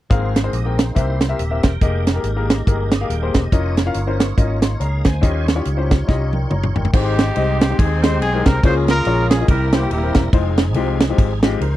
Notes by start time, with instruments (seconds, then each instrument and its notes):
0.10 fingered electric bass G#1, grand piano G#2 C4 G#4 A#4 F5, tonewheel organ A#3 F4 G#4 C5, kick, closed hi-hat
0.35 tonewheel organ D#4 C5, snare, closed hi-hat
0.44 grand piano C4 G#4 A#4 C5
0.53 fingered electric bass A#1, tonewheel organ G4 D#5, closed hi-hat
0.65 grand piano C4 G#4 A#4 G5
0.78 tonewheel organ D#4 C5, snare, closed hi-hat
0.95 fingered electric bass C2, grand piano C3 C4 G4 A#4 E5, tonewheel organ A#3 E4 G4 B4, kick, closed hi-hat
1.01 tonewheel organ C5
1.21 tonewheel organ E4 C5, snare, closed hi-hat
1.29 grand piano C4 G4 A#4 E5
1.38 fingered electric bass D#1, tonewheel organ G4 E5, closed hi-hat
1.50 grand piano C4 G4 A#4 E5
1.63 fingered electric bass E1, tonewheel organ A#4 G5, kick, snare, closed hi-hat
1.81 fingered electric bass F1, tonewheel organ G#3 D#4 G4 A#4, grand piano A#3 G4 G#4 D#5, kick, closed hi-hat
2.07 snare, closed hi-hat
2.15 grand piano A#3 G4 G#4 A#4
2.24 fingered electric bass G#1, closed hi-hat
2.36 grand piano A#3 G4 G#4 A#4
2.50 snare, closed hi-hat
2.67 fingered electric bass G1, grand piano A#3 G4 G#4 A#4, kick, closed hi-hat
2.92 tonewheel organ G4 D#5, snare, closed hi-hat
3.01 grand piano A#3 G4 G#4 F5
3.09 fingered electric bass D#1, tonewheel organ A#4 G5, closed hi-hat
3.22 grand piano A#3 G4 G#4 C5
3.34 fingered electric bass E1, tonewheel organ G4 D#5, kick, snare, closed hi-hat
3.52 fingered electric bass F1, tonewheel organ A#3 D#4 F4 C#5, grand piano C#4 F4 A#4 D#5, kick, closed hi-hat
3.77 snare, closed hi-hat
3.86 grand piano C#4 F4 A#4 F5
3.94 fingered electric bass G1, closed hi-hat
4.07 grand piano C#4 F4 A#4 C5
4.20 snare, closed hi-hat
4.37 fingered electric bass G#1, grand piano C#4 F4 A#4 D#5, kick, closed hi-hat
4.62 tonewheel organ F4 C#5, grand piano D#5 C6, snare, closed hi-hat
4.80 fingered electric bass C#2, tonewheel organ G#4 F5, grand piano C#5 A#5, closed hi-hat
5.04 fingered electric bass D2, grand piano C5 G#5, tonewheel organ C5 G#5, kick, snare, closed hi-hat
5.21 fingered electric bass D#2, grand piano D#3 C#4 F4 G4 D#5, tonewheel organ G3 D#4 F4 C#5, kick, closed hi-hat
5.48 snare, closed hi-hat
5.55 grand piano C#4 F4 G4 C#5
5.65 fingered electric bass C#2, closed hi-hat
5.77 grand piano C#4 F4 G4 C5
5.91 kick, snare, closed hi-hat
6.07 fingered electric bass C2, grand piano C#4 F4 G4 D#5, kick, snare
6.33 grand piano A#4 G5, high tom
6.51 fingered electric bass F#1, grand piano C#5 A#5, mid tom
6.63 mid tom
6.76 fingered electric bass G1, grand piano A#4 G5, floor tom
6.85 floor tom
6.93 fingered electric bass G#1, grand piano G#2 G#3 C4 D#4 G4 C5, tonewheel organ G#3 C4 D#4 G4 C5, horn section C4 D#4 G4, kick, crash
7.18 snare, ride
7.36 fingered electric bass C2, grand piano G#3 C4 D#4 G4 D#5, ride
7.61 snare, ride
7.70 grand piano G#3 C4 D#4 G4 C5
7.78 fingered electric bass D#2, horn section C4 D#4 G#4, kick, ride
8.02 grand piano G#3 C4 D#4 G4 C5, horn section C5, snare, ride
8.21 fingered electric bass B1, horn section G#4, ride
8.34 grand piano G#3 C4 D#4 G4 A#4
8.45 fingered electric bass C2, horn section A#4, kick, snare, ride
8.63 fingered electric bass C#2, grand piano C#3 A#3 C#4 F4 G#4 C#5, tonewheel organ G#3 A#3 C#4 F4 A#4, horn section F4 G#4 C5, kick, ride
8.88 horn section F4 A#4, snare, ride
9.05 fingered electric bass A#1, grand piano A#3 C#4 F4 G#4 C#5, ride
9.30 horn section G#4, snare, ride
9.41 grand piano A#3 C#4 F4 G#4 D#5
9.48 fingered electric bass C2, grand piano C3, tonewheel organ G3 A#3 C4 E4 A#4, horn section E4 G4 A#4, kick, ride
9.73 grand piano A#3 C4 E4 G4 C5, horn section G4, snare, ride
9.90 fingered electric bass D#1, horn section A#3 E4 G4, ride
10.03 grand piano A#3 C4 E4 G4 A#4
10.14 fingered electric bass E1, kick, snare, ride
10.33 fingered electric bass F1, tonewheel organ F3 G#3 C4 D#4 G#4, grand piano G#3 C4 D#4 F4 C5, kick, ride
10.57 snare, ride
10.74 fingered electric bass C2, grand piano G#3 C4 D#4 F4 G4, ride
11.00 snare, ride
11.09 grand piano G#3 C4 D#4 F4 G4
11.18 fingered electric bass G#1, kick, ride
11.43 grand piano G#3 C4 D#4 F4 G4, tonewheel organ G4 D#5, snare, ride
11.61 fingered electric bass C#2, tonewheel organ D#4 C5, grand piano A#4, ride